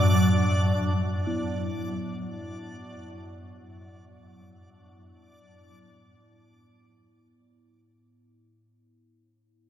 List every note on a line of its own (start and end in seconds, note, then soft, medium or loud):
0.00 4.51 F#2 medium
0.00 5.64 A2 medium
0.00 4.38 F#3 medium
0.00 4.51 F#3 medium
0.00 4.37 D4 medium
0.00 4.41 D4 medium
0.00 4.38 F#4 medium
0.00 4.41 D5 medium
0.00 4.38 E5 medium
1.27 8.76 B3 medium
1.27 8.76 E4 medium